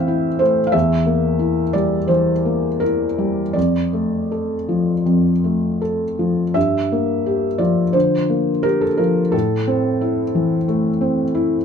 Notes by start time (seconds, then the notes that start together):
Already playing: A2 E3 A3 C4 E4 E5 F5 G5
0.08 E4
0.39 A3 C5
0.67 F5
0.72 E2 E5
1.06 A#3
1.39 E4
1.73 G3 D5
2.08 E3 C5
2.45 A#3
2.80 E4 A#4
3.18 G3
3.53 F2 D5
3.93 A3
4.32 A4
4.69 F3
5.06 F2
5.44 A3
5.82 A4
6.19 F3
6.54 G2 E5
6.92 A#3
7.26 G4
7.58 F3 D5
7.93 D3 C5
8.30 A#3
8.63 G4 A#4
8.81 A4
8.97 F3 A#4
9.32 A2 A4
9.67 C4
10.01 E4
10.35 E3
10.68 A3
11.01 C4
11.35 E4